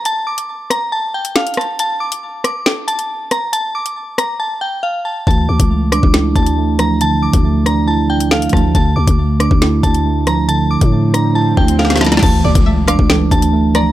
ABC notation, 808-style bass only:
X:1
M:4/4
L:1/16
Q:1/4=138
K:Dm
V:1 name="808-style bass" clef=bass
z16 | z16 | z16 | D,,2 D,, ^C,,4 C,,3 D,,6- |
D,,3 D,,8- D,,3 D,,2 | D,,2 D,, D,,4 D,,3 D,,6- | D,,3 A,,6- A,, D,,6 | D,,2 D,, ^C,,4 C,,3 D,,6 |]